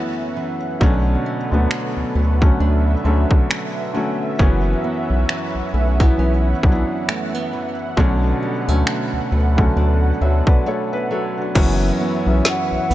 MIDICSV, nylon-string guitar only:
0, 0, Header, 1, 2, 480
1, 0, Start_track
1, 0, Key_signature, 2, "minor"
1, 0, Tempo, 895522
1, 434, Time_signature, 4, 2, 24, 8
1, 6937, End_track
2, 0, Start_track
2, 0, Title_t, "Nylon-string guitar"
2, 0, Program_c, 0, 24
2, 0, Note_on_c, 0, 42, 84
2, 0, Note_on_c, 0, 52, 54
2, 0, Note_on_c, 0, 59, 64
2, 0, Note_on_c, 0, 61, 67
2, 188, Note_off_c, 0, 52, 0
2, 195, Note_on_c, 0, 52, 59
2, 433, Note_off_c, 0, 61, 0
2, 434, Note_off_c, 0, 42, 0
2, 434, Note_on_c, 0, 47, 88
2, 438, Note_on_c, 0, 62, 74
2, 490, Note_off_c, 0, 52, 0
2, 674, Note_off_c, 0, 59, 0
2, 676, Note_on_c, 0, 57, 59
2, 914, Note_on_c, 0, 54, 56
2, 1148, Note_off_c, 0, 57, 0
2, 1154, Note_on_c, 0, 57, 59
2, 1388, Note_off_c, 0, 62, 0
2, 1395, Note_on_c, 0, 62, 67
2, 1633, Note_off_c, 0, 54, 0
2, 1635, Note_on_c, 0, 54, 57
2, 1868, Note_off_c, 0, 57, 0
2, 1875, Note_on_c, 0, 57, 60
2, 2113, Note_off_c, 0, 54, 0
2, 2115, Note_on_c, 0, 54, 57
2, 2354, Note_off_c, 0, 47, 0
2, 2354, Note_on_c, 0, 42, 88
2, 2355, Note_off_c, 0, 62, 0
2, 2357, Note_on_c, 0, 61, 71
2, 2410, Note_off_c, 0, 57, 0
2, 2595, Note_on_c, 0, 59, 58
2, 2834, Note_off_c, 0, 54, 0
2, 2837, Note_on_c, 0, 52, 58
2, 3075, Note_off_c, 0, 59, 0
2, 3077, Note_on_c, 0, 57, 60
2, 3215, Note_off_c, 0, 57, 0
2, 3215, Note_on_c, 0, 59, 50
2, 3311, Note_off_c, 0, 61, 0
2, 3317, Note_on_c, 0, 61, 70
2, 3550, Note_off_c, 0, 52, 0
2, 3557, Note_on_c, 0, 52, 54
2, 3795, Note_off_c, 0, 59, 0
2, 3797, Note_on_c, 0, 57, 63
2, 3937, Note_off_c, 0, 57, 0
2, 3937, Note_on_c, 0, 59, 54
2, 4030, Note_off_c, 0, 52, 0
2, 4036, Note_on_c, 0, 52, 58
2, 4274, Note_off_c, 0, 42, 0
2, 4276, Note_off_c, 0, 61, 0
2, 4276, Note_on_c, 0, 47, 86
2, 4279, Note_on_c, 0, 62, 71
2, 4331, Note_off_c, 0, 52, 0
2, 4332, Note_off_c, 0, 59, 0
2, 4516, Note_on_c, 0, 55, 56
2, 4654, Note_off_c, 0, 55, 0
2, 4654, Note_on_c, 0, 57, 51
2, 4755, Note_on_c, 0, 54, 57
2, 4990, Note_off_c, 0, 57, 0
2, 4996, Note_on_c, 0, 57, 57
2, 5228, Note_off_c, 0, 62, 0
2, 5235, Note_on_c, 0, 62, 67
2, 5472, Note_off_c, 0, 54, 0
2, 5474, Note_on_c, 0, 54, 57
2, 5709, Note_off_c, 0, 57, 0
2, 5716, Note_on_c, 0, 57, 62
2, 5951, Note_off_c, 0, 54, 0
2, 5953, Note_on_c, 0, 54, 59
2, 6194, Note_on_c, 0, 42, 89
2, 6195, Note_off_c, 0, 47, 0
2, 6250, Note_off_c, 0, 62, 0
2, 6251, Note_off_c, 0, 57, 0
2, 6434, Note_on_c, 0, 59, 63
2, 6672, Note_off_c, 0, 54, 0
2, 6674, Note_on_c, 0, 52, 63
2, 6912, Note_off_c, 0, 59, 0
2, 6915, Note_on_c, 0, 59, 63
2, 6937, Note_off_c, 0, 42, 0
2, 6937, Note_off_c, 0, 52, 0
2, 6937, Note_off_c, 0, 59, 0
2, 6937, End_track
0, 0, End_of_file